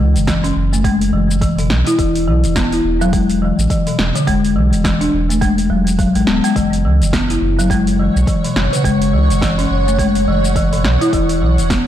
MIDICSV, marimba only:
0, 0, Header, 1, 2, 480
1, 0, Start_track
1, 0, Tempo, 571429
1, 1671, Time_signature, 4, 2, 24, 8
1, 9972, End_track
2, 0, Start_track
2, 0, Title_t, "Marimba"
2, 0, Program_c, 0, 12
2, 0, Note_on_c, 0, 52, 78
2, 124, Note_off_c, 0, 52, 0
2, 232, Note_on_c, 0, 52, 89
2, 357, Note_off_c, 0, 52, 0
2, 369, Note_on_c, 0, 61, 99
2, 595, Note_off_c, 0, 61, 0
2, 611, Note_on_c, 0, 57, 76
2, 706, Note_off_c, 0, 57, 0
2, 710, Note_on_c, 0, 56, 101
2, 940, Note_off_c, 0, 56, 0
2, 951, Note_on_c, 0, 52, 75
2, 1083, Note_off_c, 0, 52, 0
2, 1191, Note_on_c, 0, 52, 85
2, 1317, Note_off_c, 0, 52, 0
2, 1332, Note_on_c, 0, 47, 79
2, 1557, Note_off_c, 0, 47, 0
2, 1572, Note_on_c, 0, 64, 100
2, 1666, Note_off_c, 0, 64, 0
2, 1672, Note_on_c, 0, 52, 83
2, 1901, Note_off_c, 0, 52, 0
2, 1913, Note_on_c, 0, 52, 77
2, 2045, Note_off_c, 0, 52, 0
2, 2153, Note_on_c, 0, 59, 84
2, 2277, Note_off_c, 0, 59, 0
2, 2293, Note_on_c, 0, 64, 76
2, 2387, Note_off_c, 0, 64, 0
2, 2532, Note_on_c, 0, 54, 96
2, 2626, Note_off_c, 0, 54, 0
2, 2631, Note_on_c, 0, 56, 94
2, 2861, Note_off_c, 0, 56, 0
2, 2872, Note_on_c, 0, 52, 76
2, 3004, Note_off_c, 0, 52, 0
2, 3115, Note_on_c, 0, 52, 83
2, 3238, Note_off_c, 0, 52, 0
2, 3251, Note_on_c, 0, 47, 78
2, 3477, Note_off_c, 0, 47, 0
2, 3491, Note_on_c, 0, 50, 77
2, 3586, Note_off_c, 0, 50, 0
2, 3590, Note_on_c, 0, 56, 105
2, 3820, Note_off_c, 0, 56, 0
2, 3828, Note_on_c, 0, 52, 80
2, 3962, Note_off_c, 0, 52, 0
2, 4069, Note_on_c, 0, 52, 86
2, 4195, Note_off_c, 0, 52, 0
2, 4208, Note_on_c, 0, 62, 96
2, 4435, Note_off_c, 0, 62, 0
2, 4448, Note_on_c, 0, 57, 71
2, 4545, Note_off_c, 0, 57, 0
2, 4548, Note_on_c, 0, 56, 95
2, 4675, Note_off_c, 0, 56, 0
2, 4788, Note_on_c, 0, 54, 74
2, 4869, Note_off_c, 0, 54, 0
2, 5028, Note_on_c, 0, 54, 85
2, 5109, Note_off_c, 0, 54, 0
2, 5172, Note_on_c, 0, 56, 97
2, 5261, Note_off_c, 0, 56, 0
2, 5270, Note_on_c, 0, 59, 97
2, 5403, Note_off_c, 0, 59, 0
2, 5410, Note_on_c, 0, 56, 91
2, 5500, Note_off_c, 0, 56, 0
2, 5510, Note_on_c, 0, 52, 84
2, 5740, Note_off_c, 0, 52, 0
2, 5754, Note_on_c, 0, 52, 77
2, 5885, Note_off_c, 0, 52, 0
2, 5994, Note_on_c, 0, 59, 85
2, 6118, Note_off_c, 0, 59, 0
2, 6136, Note_on_c, 0, 64, 75
2, 6228, Note_off_c, 0, 64, 0
2, 6372, Note_on_c, 0, 54, 93
2, 6466, Note_off_c, 0, 54, 0
2, 6473, Note_on_c, 0, 56, 100
2, 6702, Note_off_c, 0, 56, 0
2, 6715, Note_on_c, 0, 52, 71
2, 6846, Note_off_c, 0, 52, 0
2, 6955, Note_on_c, 0, 52, 80
2, 7078, Note_off_c, 0, 52, 0
2, 7093, Note_on_c, 0, 47, 75
2, 7317, Note_off_c, 0, 47, 0
2, 7330, Note_on_c, 0, 49, 76
2, 7426, Note_off_c, 0, 49, 0
2, 7431, Note_on_c, 0, 56, 104
2, 7661, Note_off_c, 0, 56, 0
2, 7673, Note_on_c, 0, 52, 74
2, 7805, Note_off_c, 0, 52, 0
2, 7913, Note_on_c, 0, 52, 89
2, 8038, Note_off_c, 0, 52, 0
2, 8053, Note_on_c, 0, 61, 93
2, 8277, Note_off_c, 0, 61, 0
2, 8292, Note_on_c, 0, 57, 72
2, 8386, Note_off_c, 0, 57, 0
2, 8392, Note_on_c, 0, 56, 94
2, 8621, Note_off_c, 0, 56, 0
2, 8633, Note_on_c, 0, 52, 73
2, 8764, Note_off_c, 0, 52, 0
2, 8873, Note_on_c, 0, 52, 87
2, 8997, Note_off_c, 0, 52, 0
2, 9010, Note_on_c, 0, 47, 75
2, 9236, Note_off_c, 0, 47, 0
2, 9251, Note_on_c, 0, 64, 104
2, 9346, Note_off_c, 0, 64, 0
2, 9353, Note_on_c, 0, 52, 83
2, 9582, Note_off_c, 0, 52, 0
2, 9591, Note_on_c, 0, 52, 78
2, 9724, Note_off_c, 0, 52, 0
2, 9829, Note_on_c, 0, 59, 85
2, 9956, Note_off_c, 0, 59, 0
2, 9972, End_track
0, 0, End_of_file